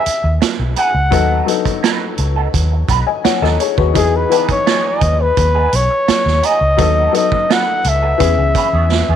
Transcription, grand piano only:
0, 0, Header, 1, 2, 480
1, 0, Start_track
1, 0, Key_signature, 4, "major"
1, 0, Tempo, 708383
1, 759, Time_signature, 4, 2, 24, 8
1, 6206, End_track
2, 0, Start_track
2, 0, Title_t, "Grand piano"
2, 0, Program_c, 0, 0
2, 0, Control_c, 0, 64, 127
2, 0, Note_on_c, 0, 52, 65
2, 0, Note_on_c, 0, 59, 55
2, 0, Note_on_c, 0, 63, 58
2, 0, Note_on_c, 0, 67, 56
2, 0, Note_on_c, 0, 68, 72
2, 750, Note_on_c, 0, 54, 64
2, 755, Note_off_c, 0, 59, 0
2, 755, Note_on_c, 0, 59, 57
2, 761, Note_off_c, 0, 63, 0
2, 761, Note_on_c, 0, 63, 58
2, 765, Note_on_c, 0, 69, 68
2, 767, Control_c, 0, 64, 0
2, 769, Note_off_c, 0, 52, 0
2, 773, Note_off_c, 0, 68, 0
2, 774, Note_off_c, 0, 67, 0
2, 905, Control_c, 0, 64, 127
2, 924, Note_off_c, 0, 54, 0
2, 926, Note_off_c, 0, 59, 0
2, 930, Note_off_c, 0, 63, 0
2, 932, Note_off_c, 0, 69, 0
2, 987, Note_on_c, 0, 54, 62
2, 992, Note_on_c, 0, 59, 58
2, 999, Note_on_c, 0, 63, 62
2, 1003, Note_on_c, 0, 69, 70
2, 1672, Note_off_c, 0, 54, 0
2, 1674, Note_off_c, 0, 59, 0
2, 1678, Note_off_c, 0, 63, 0
2, 1680, Note_off_c, 0, 69, 0
2, 2078, Note_on_c, 0, 80, 60
2, 2082, Note_on_c, 0, 75, 50
2, 2193, Note_off_c, 0, 80, 0
2, 2194, Note_off_c, 0, 75, 0
2, 2197, Note_on_c, 0, 78, 61
2, 2201, Note_on_c, 0, 73, 51
2, 2312, Note_off_c, 0, 78, 0
2, 2314, Note_off_c, 0, 73, 0
2, 2319, Note_on_c, 0, 75, 61
2, 2324, Note_on_c, 0, 69, 55
2, 2433, Note_off_c, 0, 75, 0
2, 2435, Note_off_c, 0, 69, 0
2, 2438, Note_on_c, 0, 73, 64
2, 2440, Note_on_c, 0, 68, 52
2, 2553, Note_off_c, 0, 73, 0
2, 2554, Note_off_c, 0, 68, 0
2, 2558, Note_on_c, 0, 71, 58
2, 2561, Note_on_c, 0, 66, 51
2, 2666, Note_on_c, 0, 52, 64
2, 2672, Note_on_c, 0, 59, 62
2, 2678, Note_on_c, 0, 63, 63
2, 2682, Note_on_c, 0, 68, 73
2, 2687, Control_c, 0, 64, 0
2, 2787, Note_off_c, 0, 71, 0
2, 2788, Note_off_c, 0, 66, 0
2, 2790, Control_c, 0, 64, 127
2, 2842, Note_off_c, 0, 52, 0
2, 2845, Note_off_c, 0, 59, 0
2, 2848, Note_off_c, 0, 63, 0
2, 2850, Note_off_c, 0, 68, 0
2, 2909, Note_on_c, 0, 52, 63
2, 2916, Note_on_c, 0, 59, 63
2, 2920, Note_on_c, 0, 63, 55
2, 2926, Note_on_c, 0, 71, 71
2, 3593, Note_off_c, 0, 52, 0
2, 3596, Note_off_c, 0, 59, 0
2, 3598, Note_off_c, 0, 63, 0
2, 3601, Note_off_c, 0, 71, 0
2, 4587, Note_on_c, 0, 54, 66
2, 4593, Note_on_c, 0, 59, 58
2, 4599, Note_on_c, 0, 63, 61
2, 4604, Note_on_c, 0, 69, 74
2, 4608, Control_c, 0, 64, 0
2, 4718, Control_c, 0, 64, 127
2, 4763, Note_off_c, 0, 54, 0
2, 4766, Note_off_c, 0, 59, 0
2, 4768, Note_off_c, 0, 63, 0
2, 4771, Note_off_c, 0, 69, 0
2, 4825, Note_on_c, 0, 54, 60
2, 4831, Note_on_c, 0, 59, 58
2, 4836, Note_on_c, 0, 63, 57
2, 4842, Note_on_c, 0, 69, 75
2, 5510, Note_off_c, 0, 54, 0
2, 5513, Note_off_c, 0, 59, 0
2, 5516, Note_off_c, 0, 63, 0
2, 5519, Note_off_c, 0, 69, 0
2, 5541, Note_on_c, 0, 52, 75
2, 5547, Note_on_c, 0, 59, 67
2, 5555, Note_on_c, 0, 61, 64
2, 5558, Note_on_c, 0, 68, 76
2, 5567, Control_c, 0, 64, 0
2, 5674, Control_c, 0, 64, 127
2, 6206, Note_off_c, 0, 52, 0
2, 6206, Note_off_c, 0, 59, 0
2, 6206, Note_off_c, 0, 61, 0
2, 6206, Note_off_c, 0, 68, 0
2, 6206, End_track
0, 0, End_of_file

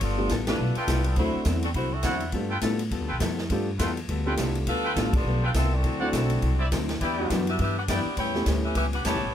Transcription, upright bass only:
0, 0, Header, 1, 3, 480
1, 0, Start_track
1, 0, Tempo, 291687
1, 26, Time_signature, 4, 2, 24, 8
1, 15378, End_track
2, 0, Start_track
2, 0, Title_t, "Upright bass"
2, 0, Program_c, 0, 32
2, 13, Note_on_c, 0, 31, 80
2, 484, Note_off_c, 0, 31, 0
2, 490, Note_on_c, 0, 33, 91
2, 957, Note_off_c, 0, 33, 0
2, 967, Note_on_c, 0, 35, 90
2, 1239, Note_off_c, 0, 35, 0
2, 1444, Note_on_c, 0, 36, 93
2, 1906, Note_off_c, 0, 36, 0
2, 1916, Note_on_c, 0, 38, 85
2, 2192, Note_off_c, 0, 38, 0
2, 2389, Note_on_c, 0, 40, 90
2, 2860, Note_off_c, 0, 40, 0
2, 2870, Note_on_c, 0, 36, 90
2, 3334, Note_off_c, 0, 36, 0
2, 3344, Note_on_c, 0, 40, 88
2, 3820, Note_off_c, 0, 40, 0
2, 3830, Note_on_c, 0, 43, 79
2, 4293, Note_off_c, 0, 43, 0
2, 4302, Note_on_c, 0, 45, 84
2, 4782, Note_off_c, 0, 45, 0
2, 4794, Note_on_c, 0, 40, 84
2, 4944, Note_off_c, 0, 40, 0
2, 4944, Note_on_c, 0, 38, 61
2, 5097, Note_off_c, 0, 38, 0
2, 5107, Note_on_c, 0, 35, 58
2, 5258, Note_off_c, 0, 35, 0
2, 5268, Note_on_c, 0, 41, 88
2, 5744, Note_off_c, 0, 41, 0
2, 5759, Note_on_c, 0, 43, 81
2, 6229, Note_off_c, 0, 43, 0
2, 6239, Note_on_c, 0, 40, 84
2, 6709, Note_off_c, 0, 40, 0
2, 6718, Note_on_c, 0, 38, 86
2, 7188, Note_off_c, 0, 38, 0
2, 7196, Note_on_c, 0, 36, 88
2, 7667, Note_off_c, 0, 36, 0
2, 7680, Note_on_c, 0, 38, 86
2, 8150, Note_off_c, 0, 38, 0
2, 8166, Note_on_c, 0, 33, 87
2, 8621, Note_off_c, 0, 33, 0
2, 8631, Note_on_c, 0, 35, 83
2, 9105, Note_off_c, 0, 35, 0
2, 9121, Note_on_c, 0, 36, 96
2, 9591, Note_off_c, 0, 36, 0
2, 9603, Note_on_c, 0, 38, 76
2, 10072, Note_off_c, 0, 38, 0
2, 10083, Note_on_c, 0, 35, 90
2, 10553, Note_off_c, 0, 35, 0
2, 10568, Note_on_c, 0, 36, 81
2, 11036, Note_off_c, 0, 36, 0
2, 11057, Note_on_c, 0, 38, 78
2, 11521, Note_off_c, 0, 38, 0
2, 11539, Note_on_c, 0, 40, 87
2, 12003, Note_off_c, 0, 40, 0
2, 12016, Note_on_c, 0, 42, 87
2, 12483, Note_off_c, 0, 42, 0
2, 12491, Note_on_c, 0, 43, 84
2, 12961, Note_off_c, 0, 43, 0
2, 12973, Note_on_c, 0, 42, 82
2, 13234, Note_off_c, 0, 42, 0
2, 13441, Note_on_c, 0, 40, 87
2, 13913, Note_off_c, 0, 40, 0
2, 13923, Note_on_c, 0, 38, 91
2, 14394, Note_off_c, 0, 38, 0
2, 14404, Note_on_c, 0, 37, 83
2, 14881, Note_off_c, 0, 37, 0
2, 14888, Note_on_c, 0, 40, 91
2, 15049, Note_off_c, 0, 40, 0
2, 15049, Note_on_c, 0, 37, 60
2, 15199, Note_off_c, 0, 37, 0
2, 15208, Note_on_c, 0, 33, 56
2, 15366, Note_off_c, 0, 33, 0
2, 15378, End_track
3, 0, Start_track
3, 0, Title_t, "Muted upright bass strokes"
3, 1248, Note_on_c, 9, 29, 40
3, 1412, Note_off_c, 9, 29, 0
3, 2223, Note_on_c, 9, 29, 39
3, 2387, Note_off_c, 9, 29, 0
3, 13244, Note_on_c, 9, 29, 35
3, 13408, Note_off_c, 9, 29, 0
3, 15378, End_track
0, 0, End_of_file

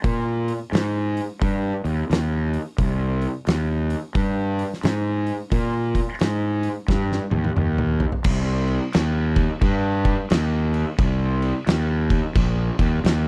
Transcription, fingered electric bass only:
0, 0, Header, 1, 2, 480
1, 0, Start_track
1, 0, Key_signature, -3, "minor"
1, 0, Tempo, 684151
1, 29, Time_signature, 4, 2, 24, 8
1, 9317, End_track
2, 0, Start_track
2, 0, Title_t, "Fingered electric bass"
2, 0, Program_c, 0, 33
2, 29, Note_on_c, 0, 46, 85
2, 357, Note_off_c, 0, 46, 0
2, 507, Note_on_c, 0, 44, 83
2, 835, Note_off_c, 0, 44, 0
2, 994, Note_on_c, 0, 43, 86
2, 1201, Note_off_c, 0, 43, 0
2, 1293, Note_on_c, 0, 39, 88
2, 1415, Note_off_c, 0, 39, 0
2, 1471, Note_on_c, 0, 39, 92
2, 1799, Note_off_c, 0, 39, 0
2, 1955, Note_on_c, 0, 36, 83
2, 2282, Note_off_c, 0, 36, 0
2, 2436, Note_on_c, 0, 39, 89
2, 2762, Note_off_c, 0, 39, 0
2, 2914, Note_on_c, 0, 43, 88
2, 3241, Note_off_c, 0, 43, 0
2, 3392, Note_on_c, 0, 44, 100
2, 3719, Note_off_c, 0, 44, 0
2, 3872, Note_on_c, 0, 46, 96
2, 4199, Note_off_c, 0, 46, 0
2, 4355, Note_on_c, 0, 44, 87
2, 4681, Note_off_c, 0, 44, 0
2, 4829, Note_on_c, 0, 43, 88
2, 5037, Note_off_c, 0, 43, 0
2, 5139, Note_on_c, 0, 39, 86
2, 5258, Note_off_c, 0, 39, 0
2, 5318, Note_on_c, 0, 39, 96
2, 5642, Note_off_c, 0, 39, 0
2, 5787, Note_on_c, 0, 36, 97
2, 6158, Note_off_c, 0, 36, 0
2, 6277, Note_on_c, 0, 39, 100
2, 6643, Note_off_c, 0, 39, 0
2, 6746, Note_on_c, 0, 43, 90
2, 7116, Note_off_c, 0, 43, 0
2, 7232, Note_on_c, 0, 39, 92
2, 7600, Note_off_c, 0, 39, 0
2, 7707, Note_on_c, 0, 36, 84
2, 8077, Note_off_c, 0, 36, 0
2, 8187, Note_on_c, 0, 39, 86
2, 8558, Note_off_c, 0, 39, 0
2, 8668, Note_on_c, 0, 34, 98
2, 8903, Note_off_c, 0, 34, 0
2, 8974, Note_on_c, 0, 39, 90
2, 9110, Note_off_c, 0, 39, 0
2, 9149, Note_on_c, 0, 39, 94
2, 9317, Note_off_c, 0, 39, 0
2, 9317, End_track
0, 0, End_of_file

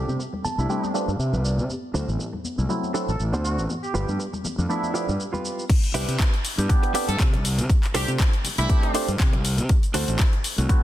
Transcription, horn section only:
0, 0, Header, 1, 2, 480
1, 0, Start_track
1, 0, Key_signature, 0, "major"
1, 0, Tempo, 500000
1, 1627, Time_signature, 4, 2, 24, 8
1, 10397, End_track
2, 0, Start_track
2, 0, Title_t, "Horn section"
2, 0, Program_c, 0, 61
2, 0, Note_on_c, 0, 67, 84
2, 110, Note_off_c, 0, 67, 0
2, 561, Note_on_c, 0, 64, 86
2, 1040, Note_off_c, 0, 64, 0
2, 2956, Note_on_c, 0, 69, 85
2, 3102, Note_off_c, 0, 69, 0
2, 3306, Note_on_c, 0, 66, 85
2, 3468, Note_off_c, 0, 66, 0
2, 3677, Note_on_c, 0, 67, 88
2, 4026, Note_off_c, 0, 67, 0
2, 4507, Note_on_c, 0, 64, 88
2, 4879, Note_off_c, 0, 64, 0
2, 6799, Note_on_c, 0, 69, 90
2, 6944, Note_off_c, 0, 69, 0
2, 7628, Note_on_c, 0, 67, 95
2, 7790, Note_off_c, 0, 67, 0
2, 8244, Note_on_c, 0, 64, 97
2, 8721, Note_off_c, 0, 64, 0
2, 10397, End_track
0, 0, End_of_file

